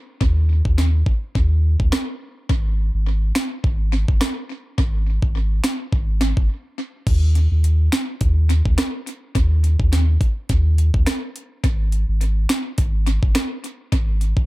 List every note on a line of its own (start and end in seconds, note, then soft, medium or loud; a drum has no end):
0.21 0.62 D#2 loud
0.21 kick loud
0.65 1.03 D#2 medium
0.65 kick medium
0.78 snare medium
1.06 kick medium
1.35 1.76 D#2 loud
1.35 kick loud
1.80 1.91 D2 medium
1.80 kick medium
1.92 finger snap loud
1.92 cross-stick loud
1.92 snare loud
2.50 2.91 G#1 loud
2.50 kick loud
2.94 3.32 G#1 loud
3.35 finger snap loud
3.35 snare loud
3.64 4.05 G#1 loud
3.64 kick loud
4.08 4.20 G1 medium
4.08 kick medium
4.21 finger snap loud
4.21 cross-stick loud
4.21 snare loud
4.78 5.19 G#1 loud
4.78 kick loud
5.22 5.60 G#1 loud
5.22 kick medium
5.64 finger snap loud
5.64 snare loud
5.93 6.33 G#1 loud
5.93 kick loud
6.21 snare medium
6.37 6.49 G1 medium
6.37 kick medium
7.07 7.48 D#2 loud
7.07 kick loud
7.07 closed hi-hat medium
7.07 crash loud
7.35 closed hi-hat medium
7.51 7.89 D#2 medium
7.64 closed hi-hat medium
7.92 finger snap loud
7.92 snare loud
7.92 closed hi-hat soft
8.21 8.62 D#2 loud
8.21 kick medium
8.21 closed hi-hat medium
8.50 closed hi-hat medium
8.65 8.77 D2 loud
8.65 kick medium
8.78 finger snap medium
8.78 cross-stick loud
8.78 snare loud
8.78 closed hi-hat medium
9.07 closed hi-hat medium
9.35 9.76 D#2 loud
9.35 kick loud
9.35 closed hi-hat medium
9.64 closed hi-hat medium
9.80 10.18 D#2 loud
9.80 kick medium
9.93 snare medium
9.93 closed hi-hat medium
10.21 kick medium
10.21 closed hi-hat soft
10.49 10.91 D#2 loud
10.49 kick loud
10.49 closed hi-hat medium
10.78 closed hi-hat medium
10.94 11.06 D2 medium
10.94 kick loud
11.06 finger snap loud
11.06 cross-stick loud
11.06 snare loud
11.06 closed hi-hat medium
11.36 closed hi-hat medium
11.64 12.05 G#1 loud
11.64 kick loud
11.64 closed hi-hat medium
11.92 closed hi-hat medium
12.08 12.46 G#1 loud
12.21 closed hi-hat medium
12.49 finger snap loud
12.49 snare loud
12.49 closed hi-hat medium
12.78 13.19 G#1 loud
12.78 kick loud
12.78 closed hi-hat medium
13.07 closed hi-hat medium
13.23 13.34 G1 medium
13.23 kick loud
13.35 finger snap loud
13.35 cross-stick loud
13.35 snare loud
13.35 closed hi-hat medium
13.64 closed hi-hat medium
13.92 14.33 G#1 loud
13.92 kick loud
13.92 closed hi-hat medium
14.21 closed hi-hat medium
14.37 14.46 G#1 loud
14.37 kick medium